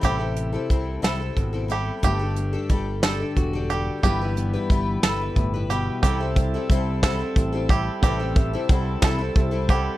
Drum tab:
HH |xxxxxx|xxxxxx|xxxxxx|xxxxxx|
SD |---o--|---o--|---o--|---o--|
BD |o-o-o-|o-o-o-|o-o-o-|oooooo|

HH |xxxxxx|
SD |---o--|
BD |oooooo|